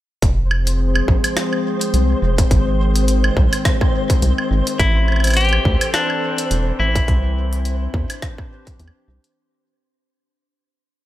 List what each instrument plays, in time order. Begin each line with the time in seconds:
0.22 analog synth bass F1, ambient pad F3, synth texture C5, kick, closed hi-hat
0.44 ambient pad C4 G#4
0.51 ambient pad C5, high woodblock
0.64 ambient pad G#3, closed hi-hat
0.95 high woodblock
1.08 analog synth bass A#1, kick
1.24 closed hi-hat, high woodblock
1.37 cross-stick, closed hi-hat
1.53 high woodblock
1.81 closed hi-hat
1.94 analog synth bass C2, closed hi-hat
2.22 analog synth bass F1
2.38 kick, closed hi-hat
2.51 analog synth bass G#1, ambient pad D#3, kick, closed hi-hat
2.96 closed hi-hat
3.08 closed hi-hat
3.24 high woodblock
3.37 analog synth bass C2, kick
3.53 closed hi-hat, high woodblock
3.65 kick, cross-stick, closed hi-hat
3.81 kick, high woodblock
4.10 kick, closed hi-hat
4.22 analog synth bass C2, closed hi-hat
4.38 high woodblock
4.51 analog synth bass G#1
4.67 closed hi-hat
4.79 analog synth bass A1, ambient pad E3, clean electric guitar E4, kick, closed hi-hat
5.08 ambient pad C5, high woodblock
5.12 high woodblock
5.16 high woodblock
5.20 closed hi-hat, high woodblock
5.24 closed hi-hat, high woodblock
5.27 closed hi-hat, high woodblock
5.30 closed hi-hat, high woodblock
5.34 clean electric guitar G4, closed hi-hat, high woodblock
5.41 ambient pad A4, closed hi-hat
5.45 closed hi-hat
5.49 closed hi-hat, high woodblock
5.65 analog synth bass D2, kick
5.81 closed hi-hat, high woodblock
5.94 clean electric guitar D4, cross-stick, closed hi-hat
6.10 high woodblock
6.38 closed hi-hat
6.51 analog synth bass E1, closed hi-hat
6.80 analog synth bass A1, clean electric guitar E4
6.96 kick, closed hi-hat
7.08 analog synth bass C2, kick, closed hi-hat
7.53 closed hi-hat
7.65 closed hi-hat
7.83 ambient pad D4 C5
7.94 analog synth bass E2, kick
8.10 ambient pad G4, closed hi-hat, high woodblock
8.22 kick, cross-stick, closed hi-hat
8.38 kick, high woodblock
8.67 kick, closed hi-hat
8.79 analog synth bass E2, closed hi-hat
8.88 high woodblock
9.08 analog synth bass C2
9.24 closed hi-hat